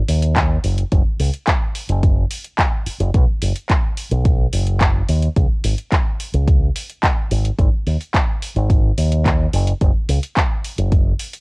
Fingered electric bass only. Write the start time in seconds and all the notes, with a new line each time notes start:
0.08 D#2
0.64 F#1
0.92 F#1
1.20 C#2
1.89 F#1
2.86 muted fingered electric bass stroke
3.00 F#1
3.14 B1
3.42 F#1
4.11 B1
4.53 F#1
5.09 D#2
5.36 C#2
5.64 G#1
6.34 C#2
7.31 G#1
7.59 G#1
7.87 D#2
8.56 G#1
8.98 D#2
9.53 F#1
9.81 F#1
10.09 C#2
10.78 F#1